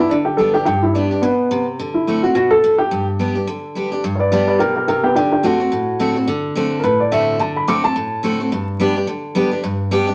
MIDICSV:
0, 0, Header, 1, 3, 480
1, 0, Start_track
1, 0, Key_signature, 1, "major"
1, 0, Tempo, 280112
1, 1148, Time_signature, 4, 2, 24, 8
1, 17386, End_track
2, 0, Start_track
2, 0, Title_t, "Upright piano"
2, 0, Program_c, 0, 0
2, 0, Note_on_c, 0, 64, 100
2, 164, Note_on_c, 0, 62, 95
2, 185, Note_off_c, 0, 64, 0
2, 250, Note_off_c, 0, 62, 0
2, 425, Note_on_c, 0, 67, 86
2, 632, Note_on_c, 0, 69, 96
2, 653, Note_off_c, 0, 67, 0
2, 908, Note_off_c, 0, 69, 0
2, 920, Note_on_c, 0, 67, 100
2, 1095, Note_off_c, 0, 67, 0
2, 1121, Note_on_c, 0, 67, 101
2, 1413, Note_on_c, 0, 64, 88
2, 1423, Note_off_c, 0, 67, 0
2, 1609, Note_on_c, 0, 62, 83
2, 1628, Note_off_c, 0, 64, 0
2, 2088, Note_on_c, 0, 59, 85
2, 2115, Note_off_c, 0, 62, 0
2, 2806, Note_off_c, 0, 59, 0
2, 3328, Note_on_c, 0, 64, 74
2, 3815, Note_on_c, 0, 66, 93
2, 3836, Note_off_c, 0, 64, 0
2, 3999, Note_off_c, 0, 66, 0
2, 4025, Note_on_c, 0, 66, 99
2, 4290, Note_off_c, 0, 66, 0
2, 4294, Note_on_c, 0, 69, 116
2, 4751, Note_off_c, 0, 69, 0
2, 4771, Note_on_c, 0, 67, 101
2, 5230, Note_off_c, 0, 67, 0
2, 7119, Note_on_c, 0, 73, 68
2, 7155, Note_off_c, 0, 73, 0
2, 7185, Note_on_c, 0, 71, 77
2, 7196, Note_on_c, 0, 74, 89
2, 7365, Note_off_c, 0, 71, 0
2, 7375, Note_off_c, 0, 74, 0
2, 7391, Note_on_c, 0, 71, 67
2, 7401, Note_on_c, 0, 74, 81
2, 7644, Note_off_c, 0, 71, 0
2, 7657, Note_off_c, 0, 74, 0
2, 7670, Note_on_c, 0, 71, 80
2, 7682, Note_on_c, 0, 74, 91
2, 7862, Note_off_c, 0, 71, 0
2, 7868, Note_on_c, 0, 67, 85
2, 7873, Note_on_c, 0, 70, 97
2, 7876, Note_off_c, 0, 74, 0
2, 8128, Note_off_c, 0, 67, 0
2, 8137, Note_off_c, 0, 70, 0
2, 8154, Note_on_c, 0, 67, 77
2, 8162, Note_on_c, 0, 70, 80
2, 8330, Note_off_c, 0, 67, 0
2, 8341, Note_off_c, 0, 70, 0
2, 8356, Note_on_c, 0, 67, 74
2, 8366, Note_on_c, 0, 70, 89
2, 8602, Note_off_c, 0, 67, 0
2, 8621, Note_on_c, 0, 59, 87
2, 8628, Note_on_c, 0, 67, 99
2, 8634, Note_off_c, 0, 70, 0
2, 8807, Note_off_c, 0, 67, 0
2, 8817, Note_off_c, 0, 59, 0
2, 8823, Note_on_c, 0, 62, 83
2, 8833, Note_on_c, 0, 67, 94
2, 9083, Note_off_c, 0, 62, 0
2, 9096, Note_off_c, 0, 67, 0
2, 9108, Note_on_c, 0, 62, 74
2, 9122, Note_on_c, 0, 67, 82
2, 9301, Note_off_c, 0, 62, 0
2, 9316, Note_off_c, 0, 67, 0
2, 9322, Note_on_c, 0, 66, 89
2, 10717, Note_off_c, 0, 66, 0
2, 11639, Note_on_c, 0, 70, 70
2, 11682, Note_off_c, 0, 70, 0
2, 11713, Note_on_c, 0, 71, 104
2, 11986, Note_off_c, 0, 71, 0
2, 12001, Note_on_c, 0, 74, 82
2, 12194, Note_off_c, 0, 74, 0
2, 12196, Note_on_c, 0, 76, 89
2, 12662, Note_off_c, 0, 76, 0
2, 12682, Note_on_c, 0, 81, 86
2, 12950, Note_off_c, 0, 81, 0
2, 12963, Note_on_c, 0, 83, 83
2, 13154, Note_off_c, 0, 83, 0
2, 13165, Note_on_c, 0, 86, 90
2, 13431, Note_off_c, 0, 86, 0
2, 13435, Note_on_c, 0, 81, 109
2, 14827, Note_off_c, 0, 81, 0
2, 17386, End_track
3, 0, Start_track
3, 0, Title_t, "Steel-string acoustic guitar"
3, 0, Program_c, 1, 25
3, 0, Note_on_c, 1, 62, 51
3, 184, Note_off_c, 1, 62, 0
3, 187, Note_on_c, 1, 50, 83
3, 651, Note_on_c, 1, 55, 55
3, 660, Note_on_c, 1, 59, 59
3, 670, Note_on_c, 1, 62, 63
3, 673, Note_on_c, 1, 67, 59
3, 909, Note_off_c, 1, 67, 0
3, 927, Note_off_c, 1, 55, 0
3, 930, Note_on_c, 1, 67, 53
3, 931, Note_off_c, 1, 62, 0
3, 932, Note_off_c, 1, 59, 0
3, 951, Note_on_c, 1, 62, 43
3, 1109, Note_off_c, 1, 50, 0
3, 1132, Note_off_c, 1, 67, 0
3, 1136, Note_on_c, 1, 43, 90
3, 1143, Note_off_c, 1, 62, 0
3, 1624, Note_on_c, 1, 55, 66
3, 1631, Note_on_c, 1, 59, 70
3, 1637, Note_on_c, 1, 62, 64
3, 1646, Note_on_c, 1, 67, 73
3, 1879, Note_off_c, 1, 67, 0
3, 1895, Note_off_c, 1, 55, 0
3, 1898, Note_off_c, 1, 59, 0
3, 1900, Note_on_c, 1, 67, 61
3, 1902, Note_off_c, 1, 62, 0
3, 1925, Note_on_c, 1, 62, 54
3, 2065, Note_off_c, 1, 43, 0
3, 2098, Note_off_c, 1, 67, 0
3, 2103, Note_on_c, 1, 47, 90
3, 2111, Note_off_c, 1, 62, 0
3, 2568, Note_off_c, 1, 47, 0
3, 2585, Note_on_c, 1, 48, 88
3, 3050, Note_off_c, 1, 48, 0
3, 3075, Note_on_c, 1, 50, 84
3, 3532, Note_off_c, 1, 50, 0
3, 3553, Note_on_c, 1, 50, 60
3, 3561, Note_on_c, 1, 57, 75
3, 3570, Note_on_c, 1, 60, 74
3, 3574, Note_on_c, 1, 66, 71
3, 3809, Note_off_c, 1, 66, 0
3, 3822, Note_off_c, 1, 50, 0
3, 3826, Note_off_c, 1, 57, 0
3, 3830, Note_off_c, 1, 60, 0
3, 3830, Note_on_c, 1, 66, 53
3, 3854, Note_on_c, 1, 60, 48
3, 4026, Note_off_c, 1, 66, 0
3, 4029, Note_on_c, 1, 47, 89
3, 4038, Note_off_c, 1, 60, 0
3, 4493, Note_off_c, 1, 47, 0
3, 4520, Note_on_c, 1, 45, 92
3, 4979, Note_off_c, 1, 45, 0
3, 4991, Note_on_c, 1, 43, 82
3, 5472, Note_on_c, 1, 55, 67
3, 5480, Note_on_c, 1, 59, 76
3, 5487, Note_on_c, 1, 62, 72
3, 5492, Note_on_c, 1, 67, 68
3, 5726, Note_off_c, 1, 67, 0
3, 5743, Note_off_c, 1, 55, 0
3, 5747, Note_off_c, 1, 59, 0
3, 5747, Note_on_c, 1, 67, 60
3, 5751, Note_off_c, 1, 62, 0
3, 5768, Note_on_c, 1, 62, 47
3, 5916, Note_off_c, 1, 43, 0
3, 5946, Note_off_c, 1, 67, 0
3, 5953, Note_on_c, 1, 50, 78
3, 5957, Note_off_c, 1, 62, 0
3, 6431, Note_on_c, 1, 55, 55
3, 6440, Note_on_c, 1, 59, 59
3, 6450, Note_on_c, 1, 62, 65
3, 6456, Note_on_c, 1, 67, 66
3, 6691, Note_off_c, 1, 67, 0
3, 6703, Note_off_c, 1, 55, 0
3, 6708, Note_off_c, 1, 59, 0
3, 6712, Note_on_c, 1, 67, 64
3, 6713, Note_off_c, 1, 62, 0
3, 6736, Note_on_c, 1, 62, 51
3, 6877, Note_off_c, 1, 50, 0
3, 6909, Note_off_c, 1, 67, 0
3, 6921, Note_off_c, 1, 62, 0
3, 6923, Note_on_c, 1, 43, 96
3, 7399, Note_on_c, 1, 55, 95
3, 7411, Note_on_c, 1, 59, 101
3, 7419, Note_on_c, 1, 62, 103
3, 7426, Note_on_c, 1, 67, 100
3, 7842, Note_off_c, 1, 43, 0
3, 7860, Note_off_c, 1, 55, 0
3, 7866, Note_off_c, 1, 59, 0
3, 7870, Note_off_c, 1, 62, 0
3, 7873, Note_off_c, 1, 67, 0
3, 7888, Note_on_c, 1, 47, 87
3, 8345, Note_off_c, 1, 47, 0
3, 8366, Note_on_c, 1, 48, 88
3, 8824, Note_off_c, 1, 48, 0
3, 8848, Note_on_c, 1, 50, 85
3, 9288, Note_off_c, 1, 50, 0
3, 9308, Note_on_c, 1, 50, 93
3, 9315, Note_on_c, 1, 57, 101
3, 9326, Note_on_c, 1, 60, 92
3, 9332, Note_on_c, 1, 66, 102
3, 9570, Note_off_c, 1, 66, 0
3, 9582, Note_off_c, 1, 50, 0
3, 9586, Note_off_c, 1, 57, 0
3, 9591, Note_off_c, 1, 60, 0
3, 9591, Note_on_c, 1, 66, 57
3, 9617, Note_on_c, 1, 60, 52
3, 9789, Note_off_c, 1, 66, 0
3, 9798, Note_on_c, 1, 45, 83
3, 9801, Note_off_c, 1, 60, 0
3, 10273, Note_on_c, 1, 50, 81
3, 10280, Note_on_c, 1, 57, 94
3, 10288, Note_on_c, 1, 60, 83
3, 10296, Note_on_c, 1, 66, 95
3, 10532, Note_off_c, 1, 66, 0
3, 10544, Note_off_c, 1, 50, 0
3, 10548, Note_off_c, 1, 57, 0
3, 10551, Note_off_c, 1, 60, 0
3, 10553, Note_on_c, 1, 66, 61
3, 10575, Note_on_c, 1, 60, 52
3, 10718, Note_off_c, 1, 45, 0
3, 10749, Note_off_c, 1, 66, 0
3, 10755, Note_on_c, 1, 50, 98
3, 10760, Note_off_c, 1, 60, 0
3, 11212, Note_off_c, 1, 50, 0
3, 11232, Note_on_c, 1, 50, 90
3, 11244, Note_on_c, 1, 57, 88
3, 11254, Note_on_c, 1, 60, 105
3, 11261, Note_on_c, 1, 66, 92
3, 11695, Note_off_c, 1, 50, 0
3, 11701, Note_off_c, 1, 57, 0
3, 11706, Note_off_c, 1, 60, 0
3, 11710, Note_off_c, 1, 66, 0
3, 11713, Note_on_c, 1, 45, 87
3, 12192, Note_on_c, 1, 50, 83
3, 12199, Note_on_c, 1, 57, 88
3, 12204, Note_on_c, 1, 60, 93
3, 12215, Note_on_c, 1, 66, 98
3, 12634, Note_off_c, 1, 45, 0
3, 12649, Note_off_c, 1, 50, 0
3, 12658, Note_off_c, 1, 57, 0
3, 12660, Note_off_c, 1, 60, 0
3, 12666, Note_off_c, 1, 66, 0
3, 12670, Note_on_c, 1, 50, 79
3, 13132, Note_off_c, 1, 50, 0
3, 13153, Note_on_c, 1, 50, 95
3, 13158, Note_on_c, 1, 57, 100
3, 13167, Note_on_c, 1, 60, 111
3, 13175, Note_on_c, 1, 66, 95
3, 13415, Note_off_c, 1, 66, 0
3, 13421, Note_off_c, 1, 50, 0
3, 13424, Note_off_c, 1, 57, 0
3, 13429, Note_off_c, 1, 60, 0
3, 13435, Note_on_c, 1, 66, 55
3, 13457, Note_on_c, 1, 60, 46
3, 13627, Note_off_c, 1, 66, 0
3, 13637, Note_on_c, 1, 45, 77
3, 13639, Note_off_c, 1, 60, 0
3, 14102, Note_on_c, 1, 50, 81
3, 14114, Note_on_c, 1, 57, 81
3, 14124, Note_on_c, 1, 60, 89
3, 14126, Note_on_c, 1, 66, 98
3, 14373, Note_off_c, 1, 66, 0
3, 14375, Note_off_c, 1, 50, 0
3, 14380, Note_off_c, 1, 57, 0
3, 14386, Note_off_c, 1, 60, 0
3, 14393, Note_on_c, 1, 66, 57
3, 14416, Note_on_c, 1, 60, 49
3, 14553, Note_off_c, 1, 45, 0
3, 14585, Note_off_c, 1, 66, 0
3, 14596, Note_off_c, 1, 60, 0
3, 14600, Note_on_c, 1, 43, 89
3, 15071, Note_on_c, 1, 55, 88
3, 15083, Note_on_c, 1, 59, 99
3, 15093, Note_on_c, 1, 62, 98
3, 15098, Note_on_c, 1, 67, 111
3, 15337, Note_off_c, 1, 55, 0
3, 15337, Note_off_c, 1, 67, 0
3, 15343, Note_off_c, 1, 59, 0
3, 15348, Note_off_c, 1, 62, 0
3, 15358, Note_on_c, 1, 67, 62
3, 15378, Note_on_c, 1, 62, 51
3, 15513, Note_off_c, 1, 43, 0
3, 15545, Note_off_c, 1, 67, 0
3, 15547, Note_on_c, 1, 50, 82
3, 15556, Note_off_c, 1, 62, 0
3, 16021, Note_on_c, 1, 55, 93
3, 16031, Note_on_c, 1, 59, 90
3, 16042, Note_on_c, 1, 62, 84
3, 16042, Note_on_c, 1, 67, 90
3, 16281, Note_off_c, 1, 67, 0
3, 16290, Note_off_c, 1, 55, 0
3, 16295, Note_off_c, 1, 59, 0
3, 16301, Note_off_c, 1, 62, 0
3, 16302, Note_on_c, 1, 67, 60
3, 16331, Note_on_c, 1, 62, 47
3, 16463, Note_off_c, 1, 50, 0
3, 16495, Note_off_c, 1, 67, 0
3, 16510, Note_off_c, 1, 62, 0
3, 16512, Note_on_c, 1, 43, 88
3, 16986, Note_on_c, 1, 55, 99
3, 16993, Note_on_c, 1, 59, 101
3, 16998, Note_on_c, 1, 62, 96
3, 17010, Note_on_c, 1, 67, 111
3, 17236, Note_off_c, 1, 67, 0
3, 17250, Note_off_c, 1, 55, 0
3, 17254, Note_off_c, 1, 59, 0
3, 17256, Note_off_c, 1, 62, 0
3, 17256, Note_on_c, 1, 67, 71
3, 17282, Note_on_c, 1, 62, 51
3, 17386, Note_off_c, 1, 43, 0
3, 17386, Note_off_c, 1, 62, 0
3, 17386, Note_off_c, 1, 67, 0
3, 17386, End_track
0, 0, End_of_file